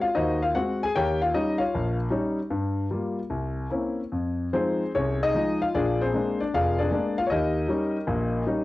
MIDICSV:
0, 0, Header, 1, 2, 480
1, 0, Start_track
1, 0, Tempo, 393443
1, 1164, Time_signature, 4, 2, 24, 8
1, 4031, Tempo, 405132
1, 7391, Tempo, 390371
1, 10470, End_track
2, 0, Start_track
2, 0, Title_t, "Grand piano"
2, 0, Program_c, 0, 0
2, 17, Note_on_c, 0, 77, 85
2, 36, Note_on_c, 0, 65, 68
2, 182, Note_on_c, 0, 75, 85
2, 185, Note_on_c, 0, 63, 63
2, 186, Note_off_c, 0, 65, 0
2, 190, Note_on_c, 0, 66, 61
2, 193, Note_off_c, 0, 77, 0
2, 193, Note_on_c, 0, 72, 60
2, 202, Note_on_c, 0, 39, 68
2, 487, Note_off_c, 0, 63, 0
2, 489, Note_off_c, 0, 66, 0
2, 491, Note_off_c, 0, 72, 0
2, 517, Note_off_c, 0, 75, 0
2, 518, Note_on_c, 0, 77, 86
2, 529, Note_on_c, 0, 65, 65
2, 618, Note_off_c, 0, 39, 0
2, 669, Note_on_c, 0, 78, 88
2, 670, Note_off_c, 0, 77, 0
2, 676, Note_off_c, 0, 65, 0
2, 677, Note_on_c, 0, 60, 49
2, 681, Note_on_c, 0, 56, 54
2, 684, Note_on_c, 0, 66, 73
2, 971, Note_off_c, 0, 78, 0
2, 979, Note_off_c, 0, 66, 0
2, 1012, Note_on_c, 0, 80, 96
2, 1014, Note_off_c, 0, 60, 0
2, 1016, Note_off_c, 0, 56, 0
2, 1037, Note_on_c, 0, 68, 76
2, 1164, Note_on_c, 0, 79, 101
2, 1168, Note_on_c, 0, 39, 70
2, 1173, Note_off_c, 0, 68, 0
2, 1175, Note_off_c, 0, 80, 0
2, 1176, Note_on_c, 0, 73, 73
2, 1181, Note_on_c, 0, 70, 69
2, 1183, Note_on_c, 0, 67, 76
2, 1458, Note_off_c, 0, 79, 0
2, 1465, Note_off_c, 0, 73, 0
2, 1467, Note_off_c, 0, 70, 0
2, 1468, Note_off_c, 0, 67, 0
2, 1484, Note_on_c, 0, 77, 83
2, 1500, Note_on_c, 0, 65, 67
2, 1581, Note_off_c, 0, 39, 0
2, 1639, Note_on_c, 0, 55, 55
2, 1640, Note_on_c, 0, 75, 87
2, 1641, Note_off_c, 0, 65, 0
2, 1642, Note_on_c, 0, 61, 51
2, 1644, Note_on_c, 0, 63, 71
2, 1649, Note_off_c, 0, 77, 0
2, 1930, Note_on_c, 0, 77, 87
2, 1932, Note_off_c, 0, 63, 0
2, 1947, Note_on_c, 0, 65, 63
2, 1948, Note_on_c, 0, 73, 58
2, 1961, Note_off_c, 0, 75, 0
2, 1967, Note_off_c, 0, 55, 0
2, 1969, Note_off_c, 0, 61, 0
2, 2129, Note_on_c, 0, 34, 71
2, 2377, Note_off_c, 0, 77, 0
2, 2385, Note_off_c, 0, 65, 0
2, 2386, Note_off_c, 0, 73, 0
2, 2529, Note_off_c, 0, 34, 0
2, 2569, Note_on_c, 0, 55, 57
2, 2572, Note_on_c, 0, 61, 53
2, 2577, Note_on_c, 0, 63, 60
2, 2907, Note_off_c, 0, 55, 0
2, 2908, Note_off_c, 0, 61, 0
2, 2911, Note_off_c, 0, 63, 0
2, 3056, Note_on_c, 0, 43, 67
2, 3479, Note_off_c, 0, 43, 0
2, 3548, Note_on_c, 0, 58, 46
2, 3549, Note_on_c, 0, 55, 50
2, 3559, Note_on_c, 0, 65, 52
2, 3884, Note_off_c, 0, 55, 0
2, 3884, Note_off_c, 0, 58, 0
2, 3890, Note_off_c, 0, 65, 0
2, 4028, Note_on_c, 0, 36, 62
2, 4443, Note_off_c, 0, 36, 0
2, 4503, Note_on_c, 0, 58, 47
2, 4517, Note_on_c, 0, 61, 44
2, 4517, Note_on_c, 0, 64, 54
2, 4518, Note_on_c, 0, 60, 43
2, 4844, Note_off_c, 0, 58, 0
2, 4850, Note_off_c, 0, 61, 0
2, 4851, Note_off_c, 0, 60, 0
2, 4851, Note_off_c, 0, 64, 0
2, 4997, Note_on_c, 0, 41, 59
2, 5421, Note_off_c, 0, 41, 0
2, 5484, Note_on_c, 0, 53, 47
2, 5486, Note_on_c, 0, 60, 57
2, 5487, Note_on_c, 0, 72, 74
2, 5490, Note_on_c, 0, 68, 56
2, 5493, Note_on_c, 0, 56, 43
2, 5498, Note_on_c, 0, 63, 53
2, 5821, Note_off_c, 0, 53, 0
2, 5825, Note_off_c, 0, 56, 0
2, 5828, Note_off_c, 0, 63, 0
2, 5933, Note_off_c, 0, 60, 0
2, 5934, Note_off_c, 0, 72, 0
2, 5936, Note_off_c, 0, 68, 0
2, 5979, Note_on_c, 0, 68, 58
2, 5979, Note_on_c, 0, 73, 81
2, 5982, Note_on_c, 0, 36, 64
2, 5984, Note_on_c, 0, 61, 59
2, 6265, Note_off_c, 0, 68, 0
2, 6265, Note_off_c, 0, 73, 0
2, 6268, Note_off_c, 0, 61, 0
2, 6312, Note_on_c, 0, 75, 100
2, 6313, Note_on_c, 0, 63, 59
2, 6313, Note_on_c, 0, 68, 62
2, 6388, Note_off_c, 0, 36, 0
2, 6445, Note_off_c, 0, 63, 0
2, 6446, Note_on_c, 0, 53, 53
2, 6453, Note_on_c, 0, 56, 46
2, 6462, Note_on_c, 0, 63, 59
2, 6742, Note_off_c, 0, 68, 0
2, 6742, Note_off_c, 0, 75, 0
2, 6770, Note_on_c, 0, 77, 91
2, 6776, Note_off_c, 0, 53, 0
2, 6776, Note_on_c, 0, 65, 74
2, 6779, Note_off_c, 0, 56, 0
2, 6784, Note_off_c, 0, 63, 0
2, 6915, Note_off_c, 0, 65, 0
2, 6915, Note_off_c, 0, 77, 0
2, 6922, Note_on_c, 0, 34, 66
2, 6924, Note_on_c, 0, 74, 85
2, 6928, Note_on_c, 0, 62, 66
2, 6932, Note_on_c, 0, 65, 66
2, 6935, Note_on_c, 0, 68, 71
2, 7213, Note_off_c, 0, 62, 0
2, 7216, Note_off_c, 0, 65, 0
2, 7217, Note_off_c, 0, 68, 0
2, 7241, Note_on_c, 0, 72, 85
2, 7242, Note_off_c, 0, 74, 0
2, 7245, Note_on_c, 0, 68, 57
2, 7247, Note_on_c, 0, 60, 60
2, 7329, Note_off_c, 0, 34, 0
2, 7387, Note_on_c, 0, 56, 52
2, 7393, Note_on_c, 0, 58, 47
2, 7398, Note_on_c, 0, 62, 53
2, 7683, Note_off_c, 0, 68, 0
2, 7684, Note_off_c, 0, 60, 0
2, 7711, Note_off_c, 0, 62, 0
2, 7715, Note_on_c, 0, 74, 83
2, 7724, Note_off_c, 0, 56, 0
2, 7727, Note_off_c, 0, 58, 0
2, 7729, Note_off_c, 0, 72, 0
2, 7729, Note_on_c, 0, 62, 64
2, 7864, Note_off_c, 0, 74, 0
2, 7872, Note_off_c, 0, 62, 0
2, 7881, Note_on_c, 0, 29, 68
2, 7887, Note_on_c, 0, 65, 68
2, 7887, Note_on_c, 0, 77, 97
2, 7891, Note_on_c, 0, 68, 67
2, 7895, Note_on_c, 0, 74, 70
2, 8166, Note_off_c, 0, 74, 0
2, 8174, Note_off_c, 0, 65, 0
2, 8176, Note_off_c, 0, 68, 0
2, 8185, Note_on_c, 0, 74, 84
2, 8204, Note_on_c, 0, 68, 65
2, 8205, Note_off_c, 0, 77, 0
2, 8208, Note_on_c, 0, 62, 65
2, 8292, Note_off_c, 0, 29, 0
2, 8334, Note_off_c, 0, 62, 0
2, 8337, Note_on_c, 0, 56, 59
2, 8352, Note_on_c, 0, 58, 52
2, 8353, Note_on_c, 0, 62, 63
2, 8640, Note_off_c, 0, 68, 0
2, 8669, Note_on_c, 0, 77, 92
2, 8674, Note_off_c, 0, 56, 0
2, 8677, Note_off_c, 0, 74, 0
2, 8681, Note_off_c, 0, 58, 0
2, 8682, Note_off_c, 0, 62, 0
2, 8688, Note_on_c, 0, 65, 70
2, 8765, Note_off_c, 0, 77, 0
2, 8775, Note_off_c, 0, 65, 0
2, 8775, Note_on_c, 0, 73, 66
2, 8817, Note_on_c, 0, 75, 91
2, 8828, Note_off_c, 0, 73, 0
2, 8831, Note_on_c, 0, 39, 73
2, 8836, Note_on_c, 0, 63, 67
2, 8839, Note_on_c, 0, 70, 65
2, 8842, Note_on_c, 0, 67, 63
2, 9240, Note_off_c, 0, 39, 0
2, 9285, Note_off_c, 0, 63, 0
2, 9291, Note_on_c, 0, 55, 55
2, 9291, Note_on_c, 0, 61, 51
2, 9303, Note_on_c, 0, 63, 60
2, 9628, Note_off_c, 0, 55, 0
2, 9628, Note_off_c, 0, 61, 0
2, 9634, Note_off_c, 0, 63, 0
2, 9766, Note_on_c, 0, 34, 75
2, 9767, Note_on_c, 0, 46, 75
2, 10191, Note_off_c, 0, 34, 0
2, 10192, Note_off_c, 0, 46, 0
2, 10252, Note_on_c, 0, 55, 56
2, 10255, Note_on_c, 0, 61, 51
2, 10261, Note_on_c, 0, 63, 65
2, 10470, Note_off_c, 0, 55, 0
2, 10470, Note_off_c, 0, 61, 0
2, 10470, Note_off_c, 0, 63, 0
2, 10470, Note_off_c, 0, 67, 0
2, 10470, Note_off_c, 0, 70, 0
2, 10470, Note_off_c, 0, 75, 0
2, 10470, End_track
0, 0, End_of_file